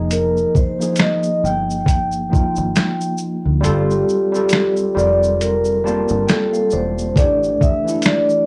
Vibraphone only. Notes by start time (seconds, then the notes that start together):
0.12 A#4
0.56 C5
1.01 D#5
1.45 G5
3.66 G4
4.97 D5
5.41 A#4
6.29 A4
6.73 C5
7.17 D5
7.62 E5
8.06 D5